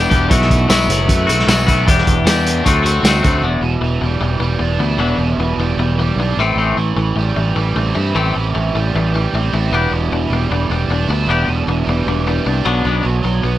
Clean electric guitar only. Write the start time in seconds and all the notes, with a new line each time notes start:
Already playing: E3 B3 D4
0.10 B3 D4 G4
0.29 E3 A3 E4 F#4
0.68 E3 A3 E4 F#4
1.27 A3 E4 F#4
1.47 E3 A3 E4 F#4
1.67 A3 E4 F#4
1.86 E3 B3 D4 G4
2.24 E3 B3 D4 G4
2.64 F#3 A3 C4 F#4
2.83 A3 C4 F#4
3.03 F#3 A3 C4 F#4
3.23 A3 C4 F#4
3.42 E3 B3 D4
3.62 E3 B3
3.81 E3 B3
4.01 E3 B3
4.21 E3 B3
4.40 E3 B3
4.59 E3 B3
4.80 E3 B3
4.98 E3 B3 D4
5.18 E3 B3
5.40 E3 B3
5.60 E3 B3
5.79 E3 B3
5.99 E3 B3
6.20 E3 B3
6.39 E3 A3 C4
6.58 E3 A3 C4
6.77 E3 A3
6.97 E3 A3
7.16 E3 A3
7.37 E3 A3
7.56 E3 A3
7.76 E3 A3
7.95 E3 A3
8.15 E3 A3 C4
8.36 E3 A3
8.55 E3 A3
8.75 E3 A3
8.96 E3 A3
9.15 E3 A3
9.35 E3 A3
9.54 E3 A3
9.73 B3 D4 G4
9.93 B3 D4
10.12 B3 D4
10.33 B3 D4
10.52 B3 D4
10.71 B3 D4
10.90 B3 D4
11.10 B3 D4
11.29 B3 D4 G4
11.49 B3 D4
11.68 B3 D4
11.89 B3 D4
12.08 B3 D4
12.27 B3 D4
12.46 B3 D4
12.65 F#3 B3 D4
12.85 F#3 B3 D4
13.06 F#3 B3
13.24 F#3 B3
13.43 F#3 B3